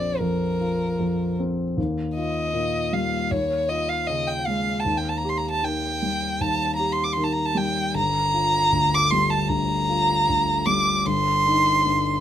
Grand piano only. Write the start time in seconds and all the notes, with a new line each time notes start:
Already playing: A#1 F2 C4 F4
0.20 F2
0.61 F4
0.99 F2
1.40 C4
1.77 D#2
2.17 F4
2.53 A#2
2.93 G3
3.31 D#2
3.70 F4
4.09 C#3
4.47 G#3
4.85 D#2
5.25 G4
5.63 D#3
6.02 G3
6.41 D#2
6.79 G4
7.17 D#3
7.55 G3
7.94 G1
8.34 F4
8.72 D2
9.12 G3
9.49 D2
9.89 F4
10.29 D2
10.67 G3
11.06 G1
11.46 D#4
11.86 G2